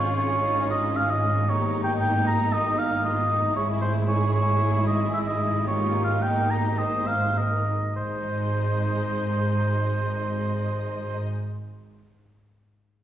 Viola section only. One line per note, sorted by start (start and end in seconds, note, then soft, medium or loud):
0.00 1.45 C#4 soft
0.00 1.45 F4 soft
1.50 3.52 A#3 soft
1.50 3.53 D#4 soft
3.56 5.64 G#3 soft
3.56 5.64 E4 soft
5.68 7.69 A#3 soft
5.68 7.69 D#4 soft
7.96 11.22 G#3 soft